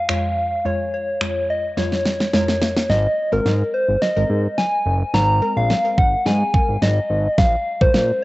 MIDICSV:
0, 0, Header, 1, 5, 480
1, 0, Start_track
1, 0, Tempo, 560748
1, 559, Time_signature, 4, 2, 24, 8
1, 7055, End_track
2, 0, Start_track
2, 0, Title_t, "Soft synth lead"
2, 0, Program_c, 0, 80
2, 0, Note_on_c, 0, 77, 109
2, 564, Note_on_c, 0, 73, 96
2, 576, Note_off_c, 0, 77, 0
2, 799, Note_off_c, 0, 73, 0
2, 804, Note_on_c, 0, 73, 95
2, 1285, Note_on_c, 0, 75, 84
2, 1297, Note_off_c, 0, 73, 0
2, 1524, Note_on_c, 0, 73, 79
2, 1537, Note_off_c, 0, 75, 0
2, 1995, Note_off_c, 0, 73, 0
2, 2000, Note_on_c, 0, 73, 100
2, 2480, Note_on_c, 0, 75, 110
2, 2493, Note_off_c, 0, 73, 0
2, 2848, Note_on_c, 0, 70, 97
2, 2861, Note_off_c, 0, 75, 0
2, 3201, Note_on_c, 0, 72, 93
2, 3214, Note_off_c, 0, 70, 0
2, 3435, Note_off_c, 0, 72, 0
2, 3440, Note_on_c, 0, 75, 103
2, 3920, Note_on_c, 0, 80, 107
2, 3933, Note_off_c, 0, 75, 0
2, 4401, Note_on_c, 0, 82, 119
2, 4413, Note_off_c, 0, 80, 0
2, 4768, Note_on_c, 0, 77, 112
2, 4781, Note_off_c, 0, 82, 0
2, 5121, Note_on_c, 0, 78, 97
2, 5134, Note_off_c, 0, 77, 0
2, 5357, Note_off_c, 0, 78, 0
2, 5362, Note_on_c, 0, 80, 112
2, 5842, Note_on_c, 0, 75, 100
2, 5855, Note_off_c, 0, 80, 0
2, 6321, Note_on_c, 0, 77, 113
2, 6333, Note_off_c, 0, 75, 0
2, 6684, Note_off_c, 0, 77, 0
2, 6689, Note_on_c, 0, 72, 104
2, 7053, Note_off_c, 0, 72, 0
2, 7055, End_track
3, 0, Start_track
3, 0, Title_t, "Synth pluck"
3, 0, Program_c, 1, 84
3, 77, Note_on_c, 1, 41, 86
3, 79, Note_on_c, 1, 56, 78
3, 80, Note_on_c, 1, 65, 82
3, 81, Note_on_c, 1, 73, 98
3, 453, Note_off_c, 1, 41, 0
3, 454, Note_off_c, 1, 56, 0
3, 454, Note_off_c, 1, 65, 0
3, 455, Note_off_c, 1, 73, 0
3, 555, Note_on_c, 1, 41, 71
3, 557, Note_on_c, 1, 56, 64
3, 559, Note_on_c, 1, 65, 66
3, 560, Note_on_c, 1, 73, 78
3, 932, Note_off_c, 1, 41, 0
3, 933, Note_off_c, 1, 56, 0
3, 934, Note_off_c, 1, 65, 0
3, 934, Note_off_c, 1, 73, 0
3, 1036, Note_on_c, 1, 41, 77
3, 1038, Note_on_c, 1, 56, 70
3, 1038, Note_on_c, 1, 65, 68
3, 1040, Note_on_c, 1, 73, 79
3, 1412, Note_off_c, 1, 41, 0
3, 1413, Note_off_c, 1, 56, 0
3, 1414, Note_off_c, 1, 65, 0
3, 1414, Note_off_c, 1, 73, 0
3, 1516, Note_on_c, 1, 41, 86
3, 1517, Note_on_c, 1, 56, 79
3, 1519, Note_on_c, 1, 65, 76
3, 1521, Note_on_c, 1, 73, 94
3, 1892, Note_off_c, 1, 41, 0
3, 1893, Note_off_c, 1, 56, 0
3, 1894, Note_off_c, 1, 65, 0
3, 1895, Note_off_c, 1, 73, 0
3, 1997, Note_on_c, 1, 41, 89
3, 1999, Note_on_c, 1, 56, 82
3, 2000, Note_on_c, 1, 65, 80
3, 2001, Note_on_c, 1, 70, 97
3, 2373, Note_off_c, 1, 41, 0
3, 2374, Note_off_c, 1, 56, 0
3, 2374, Note_off_c, 1, 65, 0
3, 2375, Note_off_c, 1, 70, 0
3, 2843, Note_on_c, 1, 56, 77
3, 2846, Note_on_c, 1, 60, 68
3, 2847, Note_on_c, 1, 70, 83
3, 3392, Note_off_c, 1, 56, 0
3, 3394, Note_off_c, 1, 60, 0
3, 3395, Note_off_c, 1, 70, 0
3, 3562, Note_on_c, 1, 56, 72
3, 3565, Note_on_c, 1, 60, 68
3, 3567, Note_on_c, 1, 70, 83
3, 4300, Note_off_c, 1, 56, 0
3, 4301, Note_off_c, 1, 60, 0
3, 4302, Note_off_c, 1, 70, 0
3, 4635, Note_on_c, 1, 56, 73
3, 4637, Note_on_c, 1, 60, 64
3, 4640, Note_on_c, 1, 70, 78
3, 4824, Note_off_c, 1, 56, 0
3, 4826, Note_off_c, 1, 60, 0
3, 4827, Note_off_c, 1, 70, 0
3, 4876, Note_on_c, 1, 56, 72
3, 4878, Note_on_c, 1, 60, 65
3, 4880, Note_on_c, 1, 70, 79
3, 4975, Note_off_c, 1, 56, 0
3, 4976, Note_off_c, 1, 60, 0
3, 4977, Note_off_c, 1, 70, 0
3, 5002, Note_on_c, 1, 56, 71
3, 5004, Note_on_c, 1, 60, 69
3, 5006, Note_on_c, 1, 70, 80
3, 5278, Note_off_c, 1, 56, 0
3, 5279, Note_off_c, 1, 60, 0
3, 5280, Note_off_c, 1, 70, 0
3, 5355, Note_on_c, 1, 56, 81
3, 5357, Note_on_c, 1, 60, 75
3, 5359, Note_on_c, 1, 68, 88
3, 5544, Note_off_c, 1, 56, 0
3, 5545, Note_off_c, 1, 60, 0
3, 5546, Note_off_c, 1, 68, 0
3, 5595, Note_on_c, 1, 56, 75
3, 5597, Note_on_c, 1, 60, 69
3, 5600, Note_on_c, 1, 70, 83
3, 6317, Note_off_c, 1, 56, 0
3, 6318, Note_off_c, 1, 60, 0
3, 6319, Note_off_c, 1, 70, 0
3, 6684, Note_on_c, 1, 56, 80
3, 6686, Note_on_c, 1, 61, 74
3, 6688, Note_on_c, 1, 70, 87
3, 7055, Note_off_c, 1, 56, 0
3, 7055, Note_off_c, 1, 61, 0
3, 7055, Note_off_c, 1, 70, 0
3, 7055, End_track
4, 0, Start_track
4, 0, Title_t, "Analog synth bass"
4, 0, Program_c, 2, 38
4, 2479, Note_on_c, 2, 32, 101
4, 2630, Note_off_c, 2, 32, 0
4, 2845, Note_on_c, 2, 32, 89
4, 2917, Note_off_c, 2, 32, 0
4, 2958, Note_on_c, 2, 44, 98
4, 3110, Note_off_c, 2, 44, 0
4, 3325, Note_on_c, 2, 32, 88
4, 3397, Note_off_c, 2, 32, 0
4, 3566, Note_on_c, 2, 32, 98
4, 3638, Note_off_c, 2, 32, 0
4, 3679, Note_on_c, 2, 44, 105
4, 3831, Note_off_c, 2, 44, 0
4, 4158, Note_on_c, 2, 30, 90
4, 4310, Note_off_c, 2, 30, 0
4, 4397, Note_on_c, 2, 32, 111
4, 4630, Note_off_c, 2, 32, 0
4, 4764, Note_on_c, 2, 34, 85
4, 4917, Note_off_c, 2, 34, 0
4, 5117, Note_on_c, 2, 32, 89
4, 5270, Note_off_c, 2, 32, 0
4, 5357, Note_on_c, 2, 44, 100
4, 5509, Note_off_c, 2, 44, 0
4, 5724, Note_on_c, 2, 32, 88
4, 5796, Note_off_c, 2, 32, 0
4, 5837, Note_on_c, 2, 32, 93
4, 5989, Note_off_c, 2, 32, 0
4, 6077, Note_on_c, 2, 32, 96
4, 6230, Note_off_c, 2, 32, 0
4, 6317, Note_on_c, 2, 34, 106
4, 6470, Note_off_c, 2, 34, 0
4, 6687, Note_on_c, 2, 34, 95
4, 6758, Note_off_c, 2, 34, 0
4, 6797, Note_on_c, 2, 46, 91
4, 6949, Note_off_c, 2, 46, 0
4, 7055, End_track
5, 0, Start_track
5, 0, Title_t, "Drums"
5, 76, Note_on_c, 9, 26, 109
5, 161, Note_off_c, 9, 26, 0
5, 1036, Note_on_c, 9, 26, 105
5, 1122, Note_off_c, 9, 26, 0
5, 1519, Note_on_c, 9, 38, 53
5, 1605, Note_off_c, 9, 38, 0
5, 1646, Note_on_c, 9, 38, 48
5, 1732, Note_off_c, 9, 38, 0
5, 1759, Note_on_c, 9, 38, 68
5, 1845, Note_off_c, 9, 38, 0
5, 1886, Note_on_c, 9, 38, 64
5, 1972, Note_off_c, 9, 38, 0
5, 1999, Note_on_c, 9, 38, 78
5, 2085, Note_off_c, 9, 38, 0
5, 2126, Note_on_c, 9, 38, 72
5, 2212, Note_off_c, 9, 38, 0
5, 2239, Note_on_c, 9, 38, 91
5, 2325, Note_off_c, 9, 38, 0
5, 2367, Note_on_c, 9, 38, 83
5, 2453, Note_off_c, 9, 38, 0
5, 2479, Note_on_c, 9, 38, 49
5, 2565, Note_off_c, 9, 38, 0
5, 2960, Note_on_c, 9, 38, 53
5, 3045, Note_off_c, 9, 38, 0
5, 3440, Note_on_c, 9, 38, 55
5, 3525, Note_off_c, 9, 38, 0
5, 3919, Note_on_c, 9, 38, 55
5, 4005, Note_off_c, 9, 38, 0
5, 4399, Note_on_c, 9, 38, 59
5, 4485, Note_off_c, 9, 38, 0
5, 4880, Note_on_c, 9, 38, 65
5, 4965, Note_off_c, 9, 38, 0
5, 5118, Note_on_c, 9, 36, 95
5, 5203, Note_off_c, 9, 36, 0
5, 5359, Note_on_c, 9, 38, 61
5, 5445, Note_off_c, 9, 38, 0
5, 5598, Note_on_c, 9, 36, 90
5, 5684, Note_off_c, 9, 36, 0
5, 5839, Note_on_c, 9, 38, 68
5, 5925, Note_off_c, 9, 38, 0
5, 6318, Note_on_c, 9, 36, 111
5, 6318, Note_on_c, 9, 38, 69
5, 6404, Note_off_c, 9, 36, 0
5, 6404, Note_off_c, 9, 38, 0
5, 6686, Note_on_c, 9, 36, 88
5, 6772, Note_off_c, 9, 36, 0
5, 6798, Note_on_c, 9, 38, 75
5, 6884, Note_off_c, 9, 38, 0
5, 7055, End_track
0, 0, End_of_file